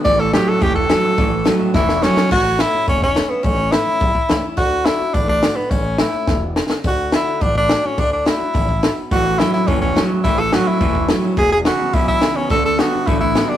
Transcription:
<<
  \new Staff \with { instrumentName = "Tenor saxophone" } { \time 4/4 \key a \major \tempo 4 = 212 d''8 a'8 g'8 a'8 g'8 a'4.~ | a'4. r8 e'4 cis'4 | fis'4 e'4 cis'8 cis'4 b8 | cis'4 e'2~ e'8 r8 |
fis'4 e'4 d'8 d'4 b8 | cis'4 e'4. r4. | fis'4 e'4 d'8 d'4 cis'8 | d'8 d'8 e'2~ e'8 r8 |
fis'4 e'8 e'8 cis'8 cis'4 r8 | e'8 a'8 fis'8 e'4. r4 | gis'8 gis'8 fis'4 e'8 e'4 cis'8 | a'8 a'8 fis'4 e'8 e'4 d'8 | }
  \new Staff \with { instrumentName = "Steel-string acoustic guitar" } { \time 4/4 \key a \major << { r4 <e a cis' e'>8 <cis' e'>8 r4 <e a cis' e'>8 <cis' e'>8 | r4 <e a cis' e'>8 <cis' e'>8 r4 <e a cis' e'>8 <cis' e'>8 | r4 <e a cis' e'>8 <cis' e'>8 r4 <e a cis' e'>8 <cis' e'>8 | r4 <e a cis' e'>8 <cis' e'>8 r4 <e a cis' e'>8 <cis' e'>8 |
r4 <d a d' fis'>8 <d' fis'>8 r4 <d a d' fis'>8 <d' fis'>8 | r4 <e a cis' e'>8 <cis' e'>8 r2 | r4 <d a d' fis'>4 r4 <d a d' fis'>8 <d' fis'>8 | r4 <d a d' fis'>8 <d' fis'>8 r2 |
r4 <e a cis' e'>8 <cis' e'>8 r4 <e a cis' e'>8 <cis' e'>8 | r4 <e a cis' e'>8 <cis' e'>8 r4 <e a cis' e'>8 <cis' e'>8 | r4 <e gis b e'>8 <b e'>8 r4 <e gis b e'>8 <b e'>8 | r4 <d a d' fis'>8 <d' fis'>8 r4 <d a d' fis'>8 <d' fis'>8 | } \\ { a,2 e,2 | a,2 e,2 | a,2 r2 | a,2 e,2 |
d2 a,2 | a,2 b,4 cis4 | d2 a,2 | d2 cis4 b,4 |
a,2 e,2 | a,2 e,2 | r2 b,2 | d2 a,2 | } >> }
  \new Staff \with { instrumentName = "Clean electric guitar" } { \clef bass \time 4/4 \key a \major <a, e>4 <a, fis>4 <a, e>4 <a, fis>4 | <a, e>4 <a, fis>4 <a, e>4 <a, fis>4 | r1 | r1 |
r1 | r1 | r1 | r1 |
<a, e>4 <a, fis>4 <a, e>4 <a, fis>4 | <a, e>4 <a, fis>4 <a, e>4 <a, fis>4 | <e, b,>4 <e, cis>4 <e, b,>4 <e, cis>4 | <d a>4 <d b>4 <d a>4 <d b>4 | }
  \new Staff \with { instrumentName = "Upright bass" } { \clef bass \time 4/4 \key a \major a,,4. r8 e,,4. r8 | a,,4. r8 e,,4. r8 | a,,4. r8 e,,4. r8 | a,,4. r8 b,,8 r8 cis,8 r8 |
d,4. r8 a,,4. r8 | a,,4. r8 e,,4. r8 | d,4. r8 a,,4. r8 | d,4. r8 a,,4. r8 |
a,,4. r8 e,,4. r8 | a,,4. r8 e,,4. r8 | e,,4. r8 b,,4. r8 | d,4. r8 a,,4. r8 | }
  \new DrumStaff \with { instrumentName = "Drums" } \drummode { \time 4/4 <hho bd>4 <hho sn>4 <hho bd>8 bd8 <hho sn>4 | <hho bd>4 <hho sn>4 <bd sn>8 sn8 sn8 sn8 | <cymc bd>4 <hho sn>4 <hho bd>8 bd8 <hho sn>4 | <hho bd>4 <hho sn>4 <hho bd>8 bd8 <hho sn>4 |
<hho bd>4 <hho sn>4 <hho bd>8 bd8 <hho sn>4 | <hho bd>4 <hho sn>4 <bd sn>4 sn8 sn8 | <hho bd>4 <hho sn>4 <hho bd>8 bd8 <hho sn>4 | <hho bd>4 <hho sn>4 <hho bd>8 bd8 <hho sn>4 |
<hho bd>4 <hho sn>4 <hho bd>8 bd8 <hho sn>4 | <hho bd>4 <hho sn>4 <hho bd>8 bd8 <hho sn>4 | <hho bd>4 <hho sn>4 <hho bd>8 bd8 <hho sn>4 | <hho bd>4 <hho sn>4 <hho bd>8 bd8 <hho sn>4 | }
>>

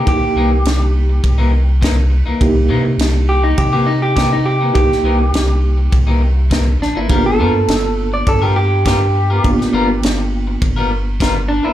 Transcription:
<<
  \new Staff \with { instrumentName = "Clean electric guitar" } { \time 4/4 \key g \dorian \tempo 4 = 102 g'2. r4 | r4. g'16 dis'16 g'16 g'16 dis'16 g'16 g'16 dis'16 g'8 | g'2. r8 d'16 e'16 | g'16 a'4. d''16 a'16 g'16 g'8 g'4~ |
g'2 r4. d'16 e'16 | }
  \new Staff \with { instrumentName = "Reed electric piano" } { \time 4/4 \key g \dorian <bes dis' e' g'>1 | <bes dis' e' g'>1 | <bes dis' e' g'>1 | <ais b d' f'>1 |
<ais b d' f'>1 | }
  \new Staff \with { instrumentName = "Clean electric guitar" } { \time 4/4 \key g \dorian r8 <c e bes dis'>16 r4. <c e bes dis'>16 r8 <c e bes dis'>16 r8 <e bes dis'>16 | r8 <c e bes dis'>16 r4. <c e bes dis'>16 r8 <c e bes dis'>16 r8 <e bes dis'>16 | r8 <c e bes dis'>16 r4. <c e bes dis'>16 r8 <c e bes dis'>16 r8 <e bes dis'>16 | <g b f' ais'>16 r16 <g b f' ais'>16 r4. <g b f' ais'>16 r8 <g b f' ais'>16 r8 <b f' ais'>16 |
r8 <g b f' ais'>16 r4. <g b f' ais'>16 r8 <g b f' ais'>16 r8 <b f' ais'>16 | }
  \new Staff \with { instrumentName = "Sub bass" } { \clef bass \time 4/4 \key g \dorian c,16 r16 c,8 c,4 c,4.~ c,16 c,16 | c,8 c8 c,4 c2 | c,16 r16 c,8 c,4 c,4. a,,16 g,,16 | g,,8 g,8 g,,4 g,2 |
g,,16 r16 g,,8 g,,4 g,,4.~ g,,16 g,,16 | }
  \new DrumStaff \with { instrumentName = "Drums" } \drummode { \time 4/4 <bd rb>4 <rb sn>4 <bd rb>4 <bd rb sn>4 | <bd rb>4 <rb sn>4 <bd rb>4 <bd rb sn>4 | <bd rb>16 sn8. <rb sn>4 <bd rb>4 <bd rb sn>8 sn8 | <bd rb>4 <rb sn>4 <bd rb>4 <bd rb sn>4 |
<bd rb>16 sn8. <rb sn>4 <bd rb>4 <bd rb sn>4 | }
>>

